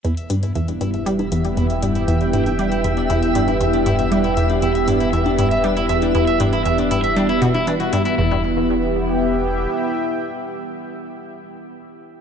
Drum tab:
HH |xxxxxxxxxxxxxxxx|xxxxxxxxxxxxxxxx|xxxxxxxxxxxxxxxx|xxxxxxxxxxxxxxxx|
CG |---------o------|---o-------o----|---------o------|---o-------o----|

HH |----------------|----------------|
CG |----------------|----------------|